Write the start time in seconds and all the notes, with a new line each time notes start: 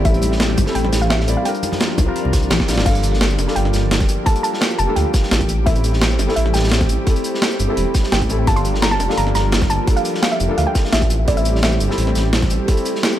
Already playing: G3 C4 G4
0.02 A1 G3 A3 C4 E5, kick, closed hi-hat
0.07 E4 A4
0.14 closed hi-hat, shaker
0.22 closed hi-hat, high conga, shaker
0.32 snare
0.40 snare, closed hi-hat
0.58 G1, kick, closed hi-hat, high conga, shaker
0.66 G3 A3 C4 E4 A4, snare
0.75 A1 G5, closed hi-hat
0.84 snare, high conga
0.93 A1, snare, closed hi-hat, shaker
1.02 F5, shaker
1.10 E5, snare, closed hi-hat
1.20 snare
1.27 A1 G3 A3 C4 E4 D5, closed hi-hat, shaker
1.37 F5
1.43 F3 G3 C4 D4 A#4 G5, closed hi-hat
1.47 F4 A#4
1.54 closed hi-hat, shaker
1.63 closed hi-hat, high conga, shaker
1.72 snare, high conga
1.80 snare, closed hi-hat
1.98 C2, kick, snare, closed hi-hat, high conga, shaker
2.06 G3 C4 D4 F4 A#4
2.16 closed hi-hat
2.25 C2, high conga
2.33 kick, snare, closed hi-hat, shaker
2.43 shaker
2.50 A#1, snare, closed hi-hat, high tom
2.60 kick, snare
2.67 A#1 G3 C4 D4 F4 D5, snare, closed hi-hat, shaker
2.73 snare, closed hi-hat
2.78 G1, snare, closed hi-hat
2.83 G1 F3 G3 A#3 D4 G4 F5, kick, closed hi-hat, crash
2.87 F4 A4
2.95 closed hi-hat, shaker
3.03 closed hi-hat, shaker
3.13 snare
3.21 snare, closed hi-hat
3.30 shaker
3.38 F1, snare, closed hi-hat, shaker
3.46 G3 A#3 D4 F4 A4, snare
3.56 G1 G5, closed hi-hat
3.65 snare
3.73 G1, snare, closed hi-hat, shaker
3.91 snare, closed hi-hat
4.00 kick, snare, closed hi-hat, shaker
4.09 G1, closed hi-hat, shaker
4.23 G3 A#3 D4 A5, kick, closed hi-hat
4.28 F4 A4
4.36 closed hi-hat, shaker
4.43 A5, closed hi-hat, shaker
4.54 snare
4.61 snare, closed hi-hat
4.71 shaker
4.78 F1 A5, closed hi-hat, shaker
4.87 G3 A#3 D4 F4 A4
4.96 D2 G5, closed hi-hat
5.14 kick, snare, closed hi-hat, shaker
5.23 snare
5.31 A1, snare, closed hi-hat
5.41 kick, snare, closed hi-hat, shaker
5.49 G3 C4, closed hi-hat, shaker
5.63 A1 G3 A3 C4 E5, kick, closed hi-hat
5.68 E4 A4
5.75 closed hi-hat, shaker
5.84 closed hi-hat, shaker
5.93 snare
6.01 snare, closed hi-hat
6.11 shaker
6.19 G1, snare, closed hi-hat, shaker
6.27 G3 A3 C4 E4 A4, snare
6.36 A1 E5, closed hi-hat
6.46 snare
6.54 A1 G5, snare, closed hi-hat, shaker
6.59 snare, closed hi-hat
6.63 snare, closed hi-hat
6.68 snare, closed hi-hat
6.72 snare, closed hi-hat
6.81 kick, snare, closed hi-hat, shaker
6.89 A1, closed hi-hat, shaker
7.04 G3 A3 C4, kick, closed hi-hat
7.08 E4 A4
7.16 closed hi-hat, shaker
7.24 closed hi-hat, shaker
7.34 snare
7.42 snare, closed hi-hat
7.51 shaker
7.60 G1, closed hi-hat, shaker
7.67 G3 A3 C4 E4 A4
7.77 E1, closed hi-hat
7.94 kick, snare, closed hi-hat, shaker
8.03 snare
8.12 G1 G5, snare, closed hi-hat
8.21 A1, kick, snare, closed hi-hat, shaker
8.28 G3 A3 C4 E4 A4, closed hi-hat, shaker
8.45 G1 F3 G3 A#3 D4 A5, kick, closed hi-hat
8.49 F4 A4
8.56 C6, closed hi-hat, shaker
8.65 closed hi-hat, shaker
8.74 snare
8.82 A#5, snare, closed hi-hat
8.91 A5, shaker
9.00 F1, snare, closed hi-hat, shaker
9.08 G3 A#3 D4 F4 A4, snare
9.17 G1 A#5, closed hi-hat
9.27 snare
9.35 G1 A#5, snare, closed hi-hat, shaker
9.52 snare, closed hi-hat
9.62 kick, snare, closed hi-hat, shaker
9.70 G1 A5, closed hi-hat, shaker
9.85 G3 A#3 D4, kick, closed hi-hat
9.89 F4 A4
9.96 F5, closed hi-hat, shaker
10.05 closed hi-hat, shaker
10.14 snare
10.22 F5, snare, closed hi-hat
10.32 E5, shaker
10.40 F1, closed hi-hat, shaker
10.48 G3 A#3 D4 F4 A4
10.58 D2 F5, closed hi-hat
10.67 G5
10.75 kick, snare, closed hi-hat, shaker
10.84 snare
10.92 A1 E5, snare, closed hi-hat
11.02 kick, snare, closed hi-hat, shaker
11.10 G3 C4 G4, closed hi-hat, shaker
11.25 A1 G3 A3 C4 D5, kick, closed hi-hat
11.30 E4 A4
11.37 E5, closed hi-hat, shaker
11.45 closed hi-hat, shaker
11.55 snare
11.63 E5, snare, closed hi-hat
11.72 shaker
11.80 G1, closed hi-hat, shaker
11.88 G3 A3 C4 E4 A4, snare
11.98 A1, closed hi-hat
12.07 snare
12.15 A1, snare, closed hi-hat, shaker
12.33 snare, closed hi-hat
12.42 kick, snare, closed hi-hat, shaker
12.50 A1, closed hi-hat, shaker
12.66 G3 A3 C4, kick, closed hi-hat
12.70 E4 A4
12.77 closed hi-hat, shaker
12.86 closed hi-hat, shaker
12.95 snare
13.03 snare, closed hi-hat
13.12 shaker